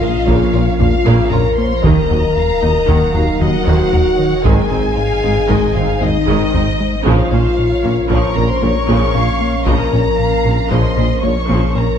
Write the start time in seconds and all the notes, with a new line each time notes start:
Already playing: A#1 F3 C#4 F4 A#4 F5
0.01 A#1 A#2 A#3 F4 A#4 D#5
0.27 A#1 A#2 C#3 A#3 C#5, taiko
0.54 A#1 A#2 A#3 F4 A#4
0.79 A#1 A#2 F3 A#3 C#4 F4 F5, taiko low
1.06 A#1 A#2 C#3 A#3
1.31 A#1 A#2 A#3 C#4 F4 A#4 C#5 A#5, taiko low
1.57 A#3 C5 C6
1.84 D#1 D#2 D#3 F#3 A#3 D#4 A#4 D#5 A#5, taiko
2.10 D#2 F#3 A#3 F#4
2.36 D#2 F5
2.62 D#2 A#3 D#4 F#4 D#5
2.88 D#2 D#3 A#3 F#5, taiko
3.14 D#2 A#3 D#4 F#4 F5
3.40 D#2 D#3 F#3 A#3 D#4 F#4 D#5 F#5, taiko low
3.67 D#2 D#3 A#3 C5
3.93 D#2 F#3 A#3 F#4 A#4, taiko low
4.19 D#3 C#5
4.44 G#1 G#2 D#3 G#3 G#4 C5 G#5, taiko
4.70 G#1 G#2 C4 D#4
4.97 G#2 F5
5.23 G#1 G#2 C4 D#4 G#4
5.49 G#1 G#2 D#3 G#3 D#5, taiko
5.75 G#1 G#2 C4 D#4 G#4 F5
6.01 G#1 G#2 G#3 C4 D#4 D#5, taiko low
6.27 G#1 G#2 D#3 G#3
6.54 G#1 G#2 C4 D#4, taiko low
6.80 G#3
7.05 A#1 A#2 C#3 F3 A#3 C#4 F4 A#4 C#5 F5, taiko
7.32 A#1 A#2 A#3 C#4 C5
7.58 A#2 C#5
7.84 A#1 A#2 A#3 C#4 A#4
8.10 A#1 A#2 C#3 F3 A#3 A#4 C#5 C#6, taiko
8.36 A#1 A#2 A#3 C#4 A#4 A#5
8.49 C5 C6
8.62 A#1 A#2 F3 A#3 F4 C#5 C#6
8.88 A#1 A#2 C#3 F3 A#3
9.15 A#1 A#2 A#3 C#4 F5
9.41 A#3
9.66 A#1 A#2 C#3 F3 A#3 A#4 D#5 A#5, taiko
9.92 A#1 A#2 A#3 C#4 C#5
10.19 A#2 F5
10.45 A#1 A#2 A#3 C#4 A#4
10.71 A#1 A#2 C#3 F3 A#3 C5 D#5 C6, taiko
10.97 A#1 A#2 A#3 C#4 A#4
11.23 A#1 A#2 F3 A#3 F4 C#5 C#6
11.49 A#1 A#2 C#3 F3 A#3 C5
11.75 A#1 A#2 A#3 C#4 A#4 C#5 A#5